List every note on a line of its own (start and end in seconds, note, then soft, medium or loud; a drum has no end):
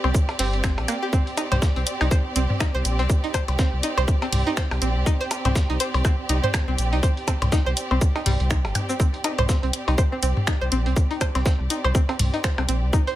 0.00 13.16 C4 medium
0.00 13.16 G4 medium
0.00 13.16 D5 medium
0.04 0.12 C2 medium
0.04 0.11 C4 medium
0.04 percussion blips medium
0.14 kick loud
0.14 shaker medium
0.29 closed hi-hat soft
0.29 percussion blips medium
0.39 0.79 G1 medium
0.39 0.49 C4 loud
0.39 closed hi-hat medium
0.39 open hi-hat medium
0.53 closed hi-hat soft
0.64 0.74 C4 medium
0.64 finger snap loud
0.64 kick loud
0.64 snare loud
0.64 shaker medium
0.78 0.86 A#1 medium
0.78 closed hi-hat soft
0.78 percussion blips medium
0.88 0.95 A#3 loud
0.88 closed hi-hat medium
0.88 percussion blips medium
0.88 shaker medium
1.03 1.07 G4 medium
1.13 1.23 C4 medium
1.13 kick loud
1.13 shaker medium
1.27 closed hi-hat soft
1.37 1.47 D#4 medium
1.37 closed hi-hat medium
1.37 percussion blips medium
1.37 shaker medium
1.52 1.60 C2 loud
1.52 1.59 C5 loud
1.52 closed hi-hat soft
1.52 mid tom medium
1.52 percussion blips medium
1.62 kick loud
1.62 snare loud
1.62 shaker medium
1.76 1.84 C2 medium
1.76 1.83 C4 medium
1.76 closed hi-hat soft
1.87 closed hi-hat loud
1.87 shaker medium
2.01 2.09 C2 medium
2.01 2.08 D#4 medium
2.01 closed hi-hat soft
2.01 percussion blips medium
2.11 2.21 C5 loud
2.11 kick loud
2.11 shaker medium
2.36 2.47 C2 loud
2.36 2.46 C4 medium
2.36 closed hi-hat medium
2.36 shaker medium
2.50 mid tom medium
2.60 2.70 D#4 medium
2.60 finger snap loud
2.60 kick loud
2.60 snare loud
2.60 percussion blips medium
2.60 shaker medium
2.75 2.82 C2 medium
2.75 2.82 C5 medium
2.85 3.01 A#1 medium
2.85 closed hi-hat medium
2.85 shaker medium
2.99 3.07 C2 medium
2.99 3.06 C4 medium
2.99 closed hi-hat soft
3.10 kick loud
3.10 shaker medium
3.24 3.31 D#4 medium
3.24 closed hi-hat soft
3.34 3.44 C5 loud
3.34 kick medium
3.34 closed hi-hat medium
3.34 percussion blips medium
3.34 shaker medium
3.48 3.56 C2 loud
3.48 snare soft
3.48 closed hi-hat soft
3.48 percussion blips medium
3.59 3.69 C4 medium
3.59 kick loud
3.59 snare loud
3.59 shaker medium
3.73 3.81 C2 medium
3.83 3.93 D#4 medium
3.83 closed hi-hat medium
3.83 shaker medium
3.97 4.05 C2 medium
3.97 4.05 C5 loud
3.97 percussion blips medium
4.08 kick loud
4.08 shaker medium
4.22 4.29 C4 medium
4.22 closed hi-hat soft
4.22 percussion blips medium
4.32 4.43 C2 loud
4.32 closed hi-hat medium
4.32 mid tom medium
4.32 open hi-hat medium
4.47 4.54 D#4 medium
4.47 closed hi-hat soft
4.57 4.67 C5 loud
4.57 finger snap loud
4.57 kick loud
4.57 snare loud
4.57 shaker medium
4.71 4.79 C2 medium
4.71 closed hi-hat soft
4.71 percussion blips medium
4.82 4.97 A#1 medium
4.82 4.92 C4 medium
4.82 closed hi-hat medium
4.82 shaker medium
4.96 5.04 C2 medium
5.06 5.16 D#4 medium
5.06 kick loud
5.06 shaker medium
5.21 5.28 C5 loud
5.21 closed hi-hat soft
5.31 closed hi-hat medium
5.31 percussion blips medium
5.31 shaker medium
5.45 5.53 C2 loud
5.45 5.52 C4 medium
5.45 closed hi-hat soft
5.45 mid tom medium
5.45 percussion blips medium
5.55 kick loud
5.55 snare loud
5.55 shaker medium
5.70 5.78 C2 medium
5.70 5.77 D#4 medium
5.70 closed hi-hat soft
5.80 5.90 C5 loud
5.80 closed hi-hat medium
5.80 shaker medium
5.94 6.02 C2 medium
5.94 closed hi-hat soft
5.94 percussion blips medium
6.05 6.14 C4 medium
6.05 kick loud
6.05 percussion blips medium
6.05 shaker medium
6.29 6.40 C2 loud
6.29 6.39 D#4 medium
6.29 closed hi-hat medium
6.29 shaker medium
6.44 6.51 C5 loud
6.44 mid tom medium
6.54 finger snap loud
6.54 kick loud
6.54 snare loud
6.54 percussion blips soft
6.54 shaker medium
6.68 6.76 C2 medium
6.68 6.75 C4 medium
6.78 6.94 A#1 medium
6.78 closed hi-hat medium
6.78 shaker medium
6.93 7.01 C2 medium
6.93 7.00 D#4 medium
6.93 closed hi-hat soft
7.03 7.13 C5 loud
7.03 kick loud
7.03 shaker medium
7.17 closed hi-hat soft
7.28 7.37 C4 medium
7.28 kick medium
7.28 closed hi-hat medium
7.28 percussion blips medium
7.28 shaker medium
7.42 7.50 C2 loud
7.42 snare soft
7.42 closed hi-hat soft
7.42 mid tom medium
7.42 percussion blips medium
7.52 7.62 D#4 medium
7.52 kick loud
7.52 snare loud
7.52 shaker medium
7.66 7.74 C2 medium
7.66 7.74 C5 loud
7.77 closed hi-hat medium
7.77 shaker medium
7.91 7.99 C2 medium
7.91 7.98 C4 medium
7.91 percussion blips medium
8.01 kick loud
8.01 shaker medium
8.16 8.23 D#4 medium
8.16 closed hi-hat soft
8.16 percussion blips medium
8.26 8.37 C2 medium
8.26 8.30 G3 medium
8.26 closed hi-hat medium
8.26 mid tom medium
8.26 open hi-hat medium
8.40 8.66 C2 medium
8.40 closed hi-hat soft
8.51 8.54 D#4 medium
8.51 finger snap loud
8.51 kick loud
8.51 shaker medium
8.65 8.73 G1 medium
8.65 closed hi-hat soft
8.65 percussion blips medium
8.75 closed hi-hat medium
8.75 mid tom medium
8.75 percussion blips medium
8.75 shaker medium
8.89 8.94 C4 medium
8.89 shaker medium
9.00 9.09 C4 medium
9.00 kick loud
9.00 shaker medium
9.14 closed hi-hat soft
9.24 9.34 D#4 medium
9.24 closed hi-hat medium
9.24 percussion blips medium
9.24 shaker medium
9.38 9.46 C2 loud
9.38 9.46 C5 loud
9.38 closed hi-hat soft
9.38 mid tom medium
9.38 percussion blips medium
9.49 9.55 C4 medium
9.49 kick loud
9.49 snare loud
9.49 shaker medium
9.63 9.71 C2 medium
9.63 9.70 C4 medium
9.63 closed hi-hat soft
9.73 closed hi-hat medium
9.73 shaker medium
9.88 9.96 C2 medium
9.88 9.95 D#4 medium
9.88 closed hi-hat soft
9.88 percussion blips medium
9.98 10.08 C5 loud
9.98 kick loud
9.98 shaker medium
10.12 10.17 C4 medium
10.23 10.33 C2 loud
10.23 10.33 C4 medium
10.23 closed hi-hat medium
10.23 shaker medium
10.37 mid tom medium
10.47 10.57 D#4 medium
10.47 finger snap loud
10.47 kick loud
10.47 snare loud
10.47 percussion blips soft
10.47 shaker medium
10.61 10.69 C2 medium
10.61 10.69 C5 loud
10.72 10.88 A#1 medium
10.72 10.78 C4 medium
10.72 closed hi-hat medium
10.72 shaker medium
10.86 10.94 C2 medium
10.86 10.93 C4 medium
10.86 closed hi-hat soft
10.96 kick loud
10.96 shaker medium
11.11 11.18 D#4 medium
11.11 closed hi-hat soft
11.21 11.31 C5 loud
11.21 kick medium
11.21 closed hi-hat medium
11.21 percussion blips medium
11.21 shaker medium
11.35 11.43 C2 loud
11.35 11.40 C4 medium
11.35 snare soft
11.35 closed hi-hat soft
11.35 percussion blips medium
11.46 11.55 C4 medium
11.46 kick loud
11.46 snare loud
11.46 shaker medium
11.60 11.68 C2 medium
11.70 11.80 D#4 medium
11.70 closed hi-hat loud
11.70 shaker medium
11.84 11.92 C2 medium
11.84 11.92 C5 loud
11.84 percussion blips medium
11.95 12.01 C4 medium
11.95 kick loud
11.95 shaker medium
12.09 12.16 C4 medium
12.09 closed hi-hat soft
12.09 percussion blips medium
12.19 12.30 C2 loud
12.19 closed hi-hat loud
12.19 mid tom medium
12.19 open hi-hat medium
12.34 12.41 D#4 medium
12.34 closed hi-hat soft
12.44 12.54 C5 loud
12.44 finger snap loud
12.44 kick loud
12.44 snare loud
12.44 shaker medium
12.58 12.66 C2 medium
12.58 12.63 C4 medium
12.58 closed hi-hat soft
12.58 percussion blips medium
12.68 12.84 A#1 medium
12.68 12.78 C4 medium
12.68 closed hi-hat medium
12.68 shaker medium
12.83 12.91 C2 medium
12.93 13.03 D#4 medium
12.93 kick loud
12.93 shaker medium
13.07 13.15 C5 loud
13.07 closed hi-hat soft